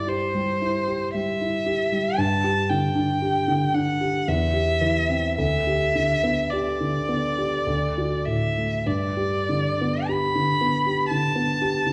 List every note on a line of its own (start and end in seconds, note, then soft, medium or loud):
0.00 2.14 G2 soft
0.00 0.34 G3 soft
0.00 0.24 E4 soft
0.00 0.08 G4 soft
0.08 0.51 G4 soft
0.08 1.14 C5 medium
0.34 0.77 G3 soft
0.62 1.04 E4 soft
0.87 1.30 G4 soft
1.14 1.56 G3 soft
1.14 2.19 E5 medium
1.41 1.82 E4 soft
1.66 2.08 G4 soft
1.92 2.18 G3 soft
2.18 4.22 G2 soft
2.18 2.70 A5 medium
2.44 2.86 G4 soft
2.69 3.12 D3 soft
2.69 3.75 G5 medium
2.95 3.38 D4 soft
3.22 3.64 G4 soft
3.48 3.89 D3 soft
3.74 4.16 D4 soft
3.74 4.29 F#5 medium
4.01 4.27 G4 soft
4.28 5.35 E2 soft
4.28 5.38 E5 medium
4.53 4.98 G4 soft
4.81 5.27 E3 soft
5.09 5.38 C4 soft
5.38 7.62 D2 soft
5.38 6.51 E5 medium
5.67 6.12 G4 soft
5.95 6.40 D3 soft
6.23 6.68 B3 soft
6.50 6.98 G4 soft
6.50 8.27 D5 medium
6.81 7.26 D3 soft
7.09 7.55 B3 soft
7.38 7.67 G4 soft
7.67 8.82 D2 soft
7.98 8.45 F#4 soft
8.25 8.74 A2 soft
8.25 8.88 E5 medium
8.58 8.86 A3 soft
8.86 11.93 G2 soft
8.86 10.09 D5 medium
9.17 9.66 G4 soft
9.49 9.96 D3 soft
9.81 10.25 B3 soft
10.08 10.51 G4 soft
10.08 11.09 B5 medium
10.35 10.76 D3 soft
10.61 11.01 B3 soft
10.86 11.26 G4 soft
11.10 11.51 D3 soft
11.10 11.93 A5 medium
11.35 11.76 B3 soft
11.62 11.93 G4 soft
11.86 11.93 D3 soft